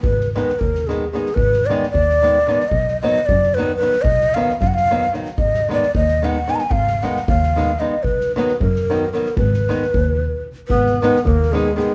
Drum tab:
SD |-ooo-oo-oo|-ooo-oo-oo|-ooo-oo-oo|-ooo-o-ooo|
BD |o---o-----|o---o-----|o---o-----|o---o-----|

SD |-ooo-oo-oo|-ooo-oo---|-ooo-oo-oo|-ooo------|
BD |o---o-----|o---o-----|o---o-----|o---o-----|

SD |-ooo-oo-o-|
BD |o---o-----|